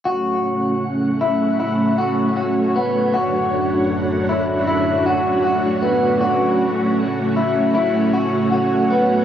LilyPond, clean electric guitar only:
\new Staff \with { instrumentName = "Clean electric guitar" } { \time 4/4 \key fis \phrygian \tempo 4 = 78 fis'4 r8 e'8 e'8 fis'8 fis'8 b8 | fis'4 r8 e'8 e'8 fis'8 fis'8 b8 | fis'4 r8 e'8 e'8 fis'8 fis'8 b8 | }